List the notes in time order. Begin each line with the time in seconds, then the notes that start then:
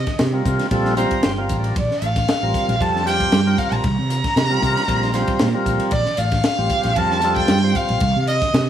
Already playing: D#5
0.06 muted fretless electric bass stroke, kick, snare, ride
0.19 C3, snare, ride
0.33 G3 C4 F4 A#4
0.45 C3, kick, hi-hat pedal, ride
0.59 snare, ride
0.71 A#1 G3 C4 F4 A4, kick, ride
0.85 snare
0.97 G3 C4 F4 C5 A#5, snare, hi-hat pedal, ride
1.11 kick, ride
1.23 G1 G5, snare, ride
1.38 G3 C4 F4 A#4 F5
1.49 A1, kick, hi-hat pedal, ride
1.59 D5
1.64 ride
1.76 A#1 D5, kick, ride
1.91 snare
2.02 A1 F4 A4 F5, hi-hat pedal, ride
2.16 kick, snare, ride
2.28 snare, ride
2.43 A1 G3 C4 F4 A#4
2.54 kick, hi-hat pedal, ride
2.68 A#1, ride
2.80 F2 G3 C4 F4 A4 A5, kick, ride
2.96 snare
3.05 G3 C4 F4 G4 G5, snare, hi-hat pedal, ride
3.20 kick, ride
3.32 G2, snare, ride
3.47 G3 C4 F4 A#4
3.58 F5, kick, hi-hat pedal, ride
3.71 A#1 A#5, ride
3.84 C2, kick, ride
3.98 C3
4.10 F4 A#4, hi-hat pedal, ride
4.24 kick, snare, ride
4.36 C3, snare, ride
4.50 G3 C4 F4 A#4
4.62 C3, kick, hi-hat pedal, ride
4.77 snare, ride
4.88 A#1 G3 C4 F4 A#4, kick, ride
5.02 snare
5.14 G3 C4 F4 C5, snare, hi-hat pedal, ride
5.27 muted fretless electric bass stroke, kick, ride
5.39 A#2, snare, ride
5.54 G3 C4 F4 A#4
5.66 A#1, kick, hi-hat pedal, ride
5.80 ride
5.91 A#1 D5, kick, ride
6.05 snare
6.17 A1 F4 A4 F5, hi-hat pedal, ride
6.31 kick, snare, ride
6.44 snare, ride
6.58 A1 G3 C4 F4 G4
6.69 kick, hi-hat pedal, ride
6.83 A#1, snare, ride
6.96 F2 G3 C4 F4 A#4 A5, kick, ride
7.10 snare
7.22 G3 C4 F4 A4, snare, hi-hat pedal, ride
7.36 G5, kick, ride
7.48 G2, snare, ride
7.63 G3 C4 F4 C5
7.75 F5, kick, hi-hat pedal, ride
7.88 A#1, ride
8.00 C2, kick, ride
8.16 C3
8.27 F4 A#4 D#5, hi-hat pedal, ride
8.41 kick, snare, ride
8.54 C3, snare, ride